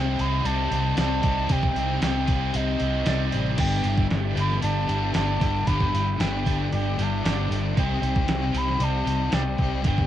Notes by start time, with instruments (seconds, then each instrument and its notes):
Already playing: fingered electric bass C2, overdriven electric guitar C3 G3 C4 D#4, distorted electric guitar C3, clean electric guitar C4 D#4, flute G5
0.00 overdriven electric guitar G4
0.19 fingered electric bass C2, overdriven electric guitar C3 G3 C4 D#4 G4, flute B5, open hi-hat
0.43 fingered electric bass C2, distorted electric guitar C3, overdriven electric guitar G3 C4 D#4, clean electric guitar D5, flute A5, open hi-hat
0.49 overdriven electric guitar G4
0.70 fingered electric bass C2, overdriven electric guitar C4 D#4 G4, open hi-hat
0.74 distorted electric guitar G3
0.97 fingered electric bass C2, overdriven electric guitar C3 G3 C4 D#4 G4, clean electric guitar D5, flute A5, snare, open hi-hat
1.22 fingered electric bass C2, distorted electric guitar G3, overdriven electric guitar C4 D#4 G4, kick, open hi-hat
1.47 fingered electric bass C2, overdriven electric guitar C3 G3 C4 D#4, kick, open hi-hat
1.51 overdriven electric guitar G4, flute G5
1.63 kick
1.74 fingered electric bass C2, overdriven electric guitar C4 D#4 G4, open hi-hat
1.78 distorted electric guitar G3
2.01 fingered electric bass C2, distorted electric guitar C3, overdriven electric guitar G3 C4 D#4 G4, flute G5, snare, open hi-hat
2.26 overdriven electric guitar C3 G3 C4 D#4 G4, kick, open hi-hat
2.53 fingered electric bass C2, distorted electric guitar C3, overdriven electric guitar G3 C4 D#4 G4, flute D#5, open hi-hat
2.78 fingered electric bass C2, overdriven electric guitar D#4 G4, open hi-hat
2.83 distorted electric guitar G3, overdriven electric guitar C4
3.04 fingered electric bass C2, overdriven electric guitar C3 G3 C4 D#4 G4, clean electric guitar D5, snare, open hi-hat
3.30 fingered electric bass A1, overdriven electric guitar C4 D#4 G4, open hi-hat
3.35 distorted electric guitar G3
3.57 fingered electric bass G1, overdriven electric guitar G2 D3 G3 B3 D4 G4, flute G5, kick, crash
3.84 fingered electric bass G1, overdriven electric guitar G3 B3 D4 G4, clean electric guitar E4, open hi-hat
3.88 distorted electric guitar D3
3.98 kick
4.10 fingered electric bass G1, distorted electric guitar G2 D3, overdriven electric guitar G3 B3 D4 G4, snare, open hi-hat
4.36 fingered electric bass G1, overdriven electric guitar G2 D3 G3 B3 D4 G4, clean electric guitar A4, open hi-hat
4.40 flute B5
4.51 snare
4.62 fingered electric bass G1, distorted electric guitar G2 D3, overdriven electric guitar G3 B3 D4, clean electric guitar D5, flute A5, open hi-hat
4.66 overdriven electric guitar G4
4.87 fingered electric bass G1, distorted electric guitar D3 G3, overdriven electric guitar B3 D4 G4, clean electric guitar E4, open hi-hat
4.92 overdriven electric guitar G3
5.13 fingered electric bass G1, overdriven electric guitar G2 D3 G3 B3 D4 G4, clean electric guitar D5, flute A5, snare, open hi-hat
5.39 fingered electric bass G1, distorted electric guitar D3 G3, overdriven electric guitar B3 D4 G4, clean electric guitar A4, kick, open hi-hat
5.44 overdriven electric guitar G3
5.67 fingered electric bass G1, overdriven electric guitar G2 D3 G3 B3 D4, flute B5, kick, open hi-hat
5.71 overdriven electric guitar G4
5.81 kick
5.91 fingered electric bass G1, distorted electric guitar D3 G3, clean electric guitar E4, overdriven electric guitar G4
5.95 overdriven electric guitar G3 B3 D4, open hi-hat
6.17 fingered electric bass G1, distorted electric guitar G2 D3, overdriven electric guitar G3 B3 D4, flute G5, snare, open hi-hat
6.22 overdriven electric guitar G4
6.44 overdriven electric guitar G2 D3 G3 B3 D4 G4, clean electric guitar A4, kick, open hi-hat
6.70 fingered electric bass G1, distorted electric guitar G2 D3, overdriven electric guitar G3 B3, clean electric guitar D5, open hi-hat
6.74 overdriven electric guitar D4 G4, flute G5
6.97 fingered electric bass G1, distorted electric guitar D3 G3, overdriven electric guitar B3 D4 G4, clean electric guitar E4, open hi-hat
7.02 overdriven electric guitar G3, flute A5
7.23 fingered electric bass G1, overdriven electric guitar G2 D3 G3 B3 D4, clean electric guitar D5, snare, open hi-hat
7.27 overdriven electric guitar G4
7.48 fingered electric bass G1, distorted electric guitar G3, overdriven electric guitar B3 D4 G4, clean electric guitar A4, open hi-hat
7.53 distorted electric guitar D3, overdriven electric guitar G3
7.75 fingered electric bass C2, overdriven electric guitar C3 G3 C4 D#4 G4, flute G5, kick, open hi-hat
8.00 fingered electric bass C2, distorted electric guitar G3, overdriven electric guitar C4 D#4 G4, open hi-hat
8.16 kick
8.27 fingered electric bass C2, distorted electric guitar C3, overdriven electric guitar G3 C4 D#4 G4, snare, open hi-hat
8.52 fingered electric bass C2, overdriven electric guitar C3 G3 C4 D#4 G4, open hi-hat
8.57 flute B5
8.68 snare
8.79 fingered electric bass C2, distorted electric guitar C3, overdriven electric guitar G3 C4 D#4 G4, clean electric guitar D5, open hi-hat
8.84 flute A5
9.05 fingered electric bass C2, distorted electric guitar G3, overdriven electric guitar C4 D#4 G4, open hi-hat
9.31 fingered electric bass C2, overdriven electric guitar C3 G3 C4 D#4 G4, clean electric guitar D5, flute G5, snare, open hi-hat
9.58 fingered electric bass C2, distorted electric guitar G3, overdriven electric guitar C4 D#4 G4, kick, open hi-hat
9.84 fingered electric bass G1, overdriven electric guitar G2 D3 G3 B3 D4 G4, flute G5, kick, open hi-hat
9.98 kick